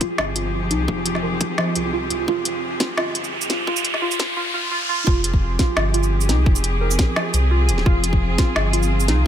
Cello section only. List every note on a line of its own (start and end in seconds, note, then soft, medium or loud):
0.00 4.33 F3 medium
0.00 4.33 C4 medium
0.00 4.33 G4 medium
0.00 4.33 G#4 medium
5.07 9.27 F3 medium
5.07 9.27 C4 medium
5.07 7.83 G4 medium
5.07 9.27 G#4 medium
7.87 9.27 F4 medium